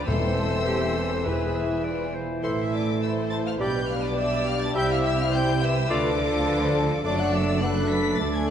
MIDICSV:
0, 0, Header, 1, 13, 480
1, 0, Start_track
1, 0, Key_signature, 0, "minor"
1, 0, Tempo, 587659
1, 65, Time_signature, 4, 2, 24, 8
1, 2945, Tempo, 574713
1, 7035, End_track
2, 0, Start_track
2, 0, Title_t, "Violin section"
2, 0, Program_c, 0, 48
2, 48, Note_on_c, 0, 88, 120
2, 1709, Note_off_c, 0, 88, 0
2, 1990, Note_on_c, 0, 84, 100
2, 2055, Note_off_c, 0, 84, 0
2, 2230, Note_on_c, 0, 86, 97
2, 2465, Note_off_c, 0, 86, 0
2, 2471, Note_on_c, 0, 88, 101
2, 2537, Note_off_c, 0, 88, 0
2, 2706, Note_on_c, 0, 93, 108
2, 2754, Note_off_c, 0, 93, 0
2, 2838, Note_on_c, 0, 89, 102
2, 2883, Note_off_c, 0, 89, 0
2, 2953, Note_on_c, 0, 91, 106
2, 3185, Note_off_c, 0, 91, 0
2, 3191, Note_on_c, 0, 89, 109
2, 3309, Note_off_c, 0, 89, 0
2, 3321, Note_on_c, 0, 86, 105
2, 3430, Note_on_c, 0, 88, 120
2, 3434, Note_off_c, 0, 86, 0
2, 3664, Note_off_c, 0, 88, 0
2, 3667, Note_on_c, 0, 89, 125
2, 3787, Note_off_c, 0, 89, 0
2, 3794, Note_on_c, 0, 93, 124
2, 3903, Note_on_c, 0, 91, 127
2, 3910, Note_off_c, 0, 93, 0
2, 4022, Note_off_c, 0, 91, 0
2, 4040, Note_on_c, 0, 89, 115
2, 4085, Note_off_c, 0, 89, 0
2, 4156, Note_on_c, 0, 88, 127
2, 4269, Note_off_c, 0, 88, 0
2, 4272, Note_on_c, 0, 89, 121
2, 4389, Note_off_c, 0, 89, 0
2, 4406, Note_on_c, 0, 91, 127
2, 4630, Note_on_c, 0, 88, 127
2, 4635, Note_off_c, 0, 91, 0
2, 4865, Note_off_c, 0, 88, 0
2, 4866, Note_on_c, 0, 86, 127
2, 5810, Note_off_c, 0, 86, 0
2, 5820, Note_on_c, 0, 86, 122
2, 5937, Note_off_c, 0, 86, 0
2, 5940, Note_on_c, 0, 90, 116
2, 6049, Note_on_c, 0, 88, 121
2, 6059, Note_off_c, 0, 90, 0
2, 6294, Note_off_c, 0, 88, 0
2, 6299, Note_on_c, 0, 90, 116
2, 6526, Note_on_c, 0, 95, 123
2, 6540, Note_off_c, 0, 90, 0
2, 6758, Note_on_c, 0, 93, 113
2, 6774, Note_off_c, 0, 95, 0
2, 6890, Note_off_c, 0, 93, 0
2, 6899, Note_on_c, 0, 92, 109
2, 7021, Note_off_c, 0, 92, 0
2, 7035, End_track
3, 0, Start_track
3, 0, Title_t, "Flute"
3, 0, Program_c, 1, 73
3, 63, Note_on_c, 1, 76, 108
3, 1716, Note_off_c, 1, 76, 0
3, 1992, Note_on_c, 1, 72, 90
3, 2046, Note_off_c, 1, 72, 0
3, 2232, Note_on_c, 1, 74, 84
3, 2453, Note_off_c, 1, 74, 0
3, 2457, Note_on_c, 1, 76, 88
3, 2512, Note_off_c, 1, 76, 0
3, 2697, Note_on_c, 1, 81, 97
3, 2816, Note_off_c, 1, 81, 0
3, 2821, Note_on_c, 1, 77, 92
3, 2870, Note_off_c, 1, 77, 0
3, 2942, Note_on_c, 1, 79, 94
3, 2997, Note_off_c, 1, 79, 0
3, 3187, Note_on_c, 1, 77, 91
3, 3305, Note_off_c, 1, 77, 0
3, 3313, Note_on_c, 1, 74, 87
3, 3363, Note_off_c, 1, 74, 0
3, 3439, Note_on_c, 1, 76, 106
3, 3686, Note_on_c, 1, 77, 102
3, 3698, Note_off_c, 1, 76, 0
3, 3796, Note_off_c, 1, 77, 0
3, 3801, Note_on_c, 1, 81, 106
3, 3925, Note_on_c, 1, 79, 127
3, 3938, Note_off_c, 1, 81, 0
3, 4042, Note_on_c, 1, 77, 106
3, 4054, Note_off_c, 1, 79, 0
3, 4167, Note_on_c, 1, 76, 108
3, 4179, Note_off_c, 1, 77, 0
3, 4277, Note_off_c, 1, 76, 0
3, 4282, Note_on_c, 1, 77, 98
3, 4332, Note_off_c, 1, 77, 0
3, 4390, Note_on_c, 1, 79, 122
3, 4628, Note_on_c, 1, 76, 106
3, 4641, Note_off_c, 1, 79, 0
3, 4871, Note_on_c, 1, 74, 127
3, 4884, Note_off_c, 1, 76, 0
3, 5814, Note_off_c, 1, 74, 0
3, 5819, Note_on_c, 1, 74, 127
3, 5943, Note_on_c, 1, 78, 108
3, 5956, Note_off_c, 1, 74, 0
3, 6054, Note_on_c, 1, 76, 110
3, 6067, Note_off_c, 1, 78, 0
3, 6296, Note_off_c, 1, 76, 0
3, 6301, Note_on_c, 1, 78, 106
3, 6355, Note_off_c, 1, 78, 0
3, 6551, Note_on_c, 1, 83, 104
3, 6776, Note_off_c, 1, 83, 0
3, 6781, Note_on_c, 1, 81, 85
3, 6831, Note_off_c, 1, 81, 0
3, 6908, Note_on_c, 1, 80, 99
3, 7024, Note_off_c, 1, 80, 0
3, 7035, End_track
4, 0, Start_track
4, 0, Title_t, "Oboe"
4, 0, Program_c, 2, 68
4, 65, Note_on_c, 2, 72, 85
4, 1018, Note_on_c, 2, 71, 81
4, 1030, Note_off_c, 2, 72, 0
4, 1745, Note_off_c, 2, 71, 0
4, 1992, Note_on_c, 2, 72, 81
4, 2159, Note_off_c, 2, 72, 0
4, 2946, Note_on_c, 2, 74, 86
4, 3114, Note_off_c, 2, 74, 0
4, 3903, Note_on_c, 2, 76, 96
4, 4071, Note_off_c, 2, 76, 0
4, 4861, Note_on_c, 2, 74, 101
4, 5028, Note_off_c, 2, 74, 0
4, 5820, Note_on_c, 2, 74, 93
4, 6265, Note_off_c, 2, 74, 0
4, 6297, Note_on_c, 2, 74, 87
4, 6771, Note_off_c, 2, 74, 0
4, 6788, Note_on_c, 2, 74, 93
4, 7035, Note_off_c, 2, 74, 0
4, 7035, End_track
5, 0, Start_track
5, 0, Title_t, "Viola section"
5, 0, Program_c, 3, 48
5, 62, Note_on_c, 3, 72, 94
5, 1716, Note_off_c, 3, 72, 0
5, 1995, Note_on_c, 3, 76, 91
5, 2439, Note_off_c, 3, 76, 0
5, 2473, Note_on_c, 3, 72, 87
5, 2937, Note_off_c, 3, 72, 0
5, 2950, Note_on_c, 3, 71, 96
5, 3430, Note_off_c, 3, 71, 0
5, 3430, Note_on_c, 3, 74, 106
5, 3906, Note_on_c, 3, 76, 117
5, 3908, Note_off_c, 3, 74, 0
5, 4376, Note_off_c, 3, 76, 0
5, 4385, Note_on_c, 3, 72, 105
5, 4854, Note_on_c, 3, 71, 104
5, 4862, Note_off_c, 3, 72, 0
5, 5095, Note_on_c, 3, 69, 98
5, 5097, Note_off_c, 3, 71, 0
5, 5336, Note_on_c, 3, 71, 102
5, 5338, Note_off_c, 3, 69, 0
5, 5574, Note_off_c, 3, 71, 0
5, 5577, Note_on_c, 3, 69, 95
5, 5813, Note_off_c, 3, 69, 0
5, 5817, Note_on_c, 3, 74, 107
5, 6287, Note_on_c, 3, 71, 99
5, 6288, Note_off_c, 3, 74, 0
5, 6773, Note_on_c, 3, 69, 83
5, 6775, Note_off_c, 3, 71, 0
5, 7035, Note_off_c, 3, 69, 0
5, 7035, End_track
6, 0, Start_track
6, 0, Title_t, "Trumpet section"
6, 0, Program_c, 4, 61
6, 62, Note_on_c, 4, 69, 82
6, 1025, Note_off_c, 4, 69, 0
6, 1026, Note_on_c, 4, 68, 76
6, 1749, Note_off_c, 4, 68, 0
6, 1997, Note_on_c, 4, 69, 83
6, 2915, Note_off_c, 4, 69, 0
6, 2946, Note_on_c, 4, 67, 88
6, 4862, Note_on_c, 4, 69, 104
6, 4864, Note_off_c, 4, 67, 0
6, 5819, Note_off_c, 4, 69, 0
6, 5830, Note_on_c, 4, 69, 93
6, 6270, Note_off_c, 4, 69, 0
6, 6307, Note_on_c, 4, 69, 94
6, 6772, Note_off_c, 4, 69, 0
6, 6782, Note_on_c, 4, 69, 86
6, 7035, Note_off_c, 4, 69, 0
6, 7035, End_track
7, 0, Start_track
7, 0, Title_t, "Violin section"
7, 0, Program_c, 5, 48
7, 60, Note_on_c, 5, 69, 93
7, 63, Note_on_c, 5, 72, 90
7, 1005, Note_off_c, 5, 69, 0
7, 1007, Note_off_c, 5, 72, 0
7, 1021, Note_on_c, 5, 71, 75
7, 1024, Note_on_c, 5, 68, 77
7, 1507, Note_off_c, 5, 68, 0
7, 1507, Note_on_c, 5, 65, 76
7, 1806, Note_off_c, 5, 71, 0
7, 1819, Note_off_c, 5, 65, 0
7, 1992, Note_on_c, 5, 72, 80
7, 1993, Note_on_c, 5, 64, 77
7, 2438, Note_off_c, 5, 64, 0
7, 2438, Note_off_c, 5, 72, 0
7, 2470, Note_on_c, 5, 72, 82
7, 2477, Note_on_c, 5, 64, 88
7, 2935, Note_off_c, 5, 72, 0
7, 2939, Note_off_c, 5, 64, 0
7, 2944, Note_on_c, 5, 74, 88
7, 2945, Note_on_c, 5, 62, 88
7, 3887, Note_off_c, 5, 74, 0
7, 3907, Note_off_c, 5, 62, 0
7, 3909, Note_on_c, 5, 64, 99
7, 3909, Note_on_c, 5, 72, 95
7, 4378, Note_off_c, 5, 64, 0
7, 4380, Note_off_c, 5, 72, 0
7, 4389, Note_on_c, 5, 64, 103
7, 4390, Note_on_c, 5, 72, 104
7, 4622, Note_off_c, 5, 72, 0
7, 4630, Note_on_c, 5, 71, 97
7, 4855, Note_off_c, 5, 64, 0
7, 4865, Note_off_c, 5, 71, 0
7, 4867, Note_on_c, 5, 65, 103
7, 4869, Note_on_c, 5, 69, 105
7, 5810, Note_off_c, 5, 69, 0
7, 5819, Note_on_c, 5, 62, 99
7, 5820, Note_on_c, 5, 69, 102
7, 5822, Note_off_c, 5, 65, 0
7, 6286, Note_off_c, 5, 69, 0
7, 6288, Note_off_c, 5, 62, 0
7, 6296, Note_on_c, 5, 69, 94
7, 6298, Note_on_c, 5, 62, 91
7, 6762, Note_off_c, 5, 69, 0
7, 6763, Note_off_c, 5, 62, 0
7, 6772, Note_on_c, 5, 69, 94
7, 6773, Note_on_c, 5, 62, 92
7, 7035, Note_off_c, 5, 62, 0
7, 7035, Note_off_c, 5, 69, 0
7, 7035, End_track
8, 0, Start_track
8, 0, Title_t, "Clarinet"
8, 0, Program_c, 6, 71
8, 67, Note_on_c, 6, 69, 82
8, 411, Note_off_c, 6, 69, 0
8, 540, Note_on_c, 6, 67, 98
8, 781, Note_on_c, 6, 69, 82
8, 793, Note_off_c, 6, 67, 0
8, 1030, Note_on_c, 6, 71, 87
8, 1042, Note_off_c, 6, 69, 0
8, 1270, Note_on_c, 6, 76, 94
8, 1282, Note_off_c, 6, 71, 0
8, 1504, Note_on_c, 6, 74, 83
8, 1516, Note_off_c, 6, 76, 0
8, 1750, Note_on_c, 6, 72, 83
8, 1762, Note_off_c, 6, 74, 0
8, 1979, Note_off_c, 6, 72, 0
8, 1984, Note_on_c, 6, 69, 77
8, 2153, Note_off_c, 6, 69, 0
8, 2938, Note_on_c, 6, 67, 80
8, 3108, Note_off_c, 6, 67, 0
8, 3911, Note_on_c, 6, 67, 93
8, 4077, Note_off_c, 6, 67, 0
8, 4865, Note_on_c, 6, 65, 102
8, 5031, Note_off_c, 6, 65, 0
8, 5809, Note_on_c, 6, 62, 94
8, 6259, Note_off_c, 6, 62, 0
8, 6295, Note_on_c, 6, 62, 89
8, 6768, Note_off_c, 6, 62, 0
8, 6773, Note_on_c, 6, 62, 84
8, 7035, Note_off_c, 6, 62, 0
8, 7035, End_track
9, 0, Start_track
9, 0, Title_t, "French horn section"
9, 0, Program_c, 7, 60
9, 51, Note_on_c, 7, 52, 94
9, 55, Note_on_c, 7, 60, 95
9, 1002, Note_off_c, 7, 60, 0
9, 1025, Note_on_c, 7, 64, 91
9, 2938, Note_off_c, 7, 52, 0
9, 2944, Note_off_c, 7, 64, 0
9, 2947, Note_on_c, 7, 62, 86
9, 2948, Note_on_c, 7, 55, 92
9, 3902, Note_on_c, 7, 64, 106
9, 3908, Note_off_c, 7, 62, 0
9, 4724, Note_off_c, 7, 55, 0
9, 4724, Note_off_c, 7, 64, 0
9, 4866, Note_on_c, 7, 62, 101
9, 4871, Note_on_c, 7, 53, 101
9, 5802, Note_off_c, 7, 62, 0
9, 5823, Note_on_c, 7, 54, 100
9, 5824, Note_off_c, 7, 53, 0
9, 5825, Note_on_c, 7, 62, 104
9, 6266, Note_off_c, 7, 54, 0
9, 6268, Note_off_c, 7, 62, 0
9, 6302, Note_on_c, 7, 54, 90
9, 6303, Note_on_c, 7, 62, 89
9, 6771, Note_off_c, 7, 62, 0
9, 6773, Note_off_c, 7, 54, 0
9, 6781, Note_on_c, 7, 62, 96
9, 6784, Note_on_c, 7, 57, 100
9, 7035, Note_off_c, 7, 57, 0
9, 7035, Note_off_c, 7, 62, 0
9, 7035, End_track
10, 0, Start_track
10, 0, Title_t, "Bassoon"
10, 0, Program_c, 8, 70
10, 70, Note_on_c, 8, 52, 85
10, 1010, Note_off_c, 8, 52, 0
10, 1024, Note_on_c, 8, 52, 78
10, 1734, Note_off_c, 8, 52, 0
10, 1988, Note_on_c, 8, 52, 80
10, 2156, Note_off_c, 8, 52, 0
10, 2944, Note_on_c, 8, 55, 87
10, 3113, Note_off_c, 8, 55, 0
10, 3902, Note_on_c, 8, 55, 97
10, 4071, Note_off_c, 8, 55, 0
10, 4867, Note_on_c, 8, 57, 99
10, 5032, Note_off_c, 8, 57, 0
10, 5823, Note_on_c, 8, 57, 96
10, 6267, Note_off_c, 8, 57, 0
10, 6300, Note_on_c, 8, 57, 90
10, 6772, Note_off_c, 8, 57, 0
10, 6778, Note_on_c, 8, 57, 82
10, 7035, Note_off_c, 8, 57, 0
10, 7035, End_track
11, 0, Start_track
11, 0, Title_t, "Cello section"
11, 0, Program_c, 10, 48
11, 66, Note_on_c, 10, 40, 88
11, 1793, Note_off_c, 10, 40, 0
11, 1994, Note_on_c, 10, 45, 83
11, 2914, Note_off_c, 10, 45, 0
11, 2951, Note_on_c, 10, 47, 88
11, 3909, Note_on_c, 10, 48, 104
11, 3910, Note_off_c, 10, 47, 0
11, 4845, Note_off_c, 10, 48, 0
11, 4865, Note_on_c, 10, 50, 107
11, 5802, Note_off_c, 10, 50, 0
11, 5822, Note_on_c, 10, 42, 106
11, 6763, Note_off_c, 10, 42, 0
11, 6778, Note_on_c, 10, 38, 92
11, 7035, Note_off_c, 10, 38, 0
11, 7035, End_track
12, 0, Start_track
12, 0, Title_t, "Timpani"
12, 0, Program_c, 11, 47
12, 63, Note_on_c, 11, 40, 117
12, 753, Note_off_c, 11, 40, 0
12, 1035, Note_on_c, 11, 40, 102
12, 1721, Note_off_c, 11, 40, 0
12, 7035, End_track
13, 0, Start_track
13, 0, Title_t, "Double bass section"
13, 0, Program_c, 12, 48
13, 57, Note_on_c, 12, 28, 86
13, 1789, Note_off_c, 12, 28, 0
13, 1985, Note_on_c, 12, 33, 83
13, 2909, Note_off_c, 12, 33, 0
13, 2943, Note_on_c, 12, 35, 84
13, 3906, Note_off_c, 12, 35, 0
13, 3910, Note_on_c, 12, 36, 97
13, 4846, Note_off_c, 12, 36, 0
13, 4865, Note_on_c, 12, 38, 102
13, 5802, Note_off_c, 12, 38, 0
13, 5818, Note_on_c, 12, 30, 107
13, 6761, Note_off_c, 12, 30, 0
13, 6779, Note_on_c, 12, 38, 92
13, 7035, Note_off_c, 12, 38, 0
13, 7035, End_track
0, 0, End_of_file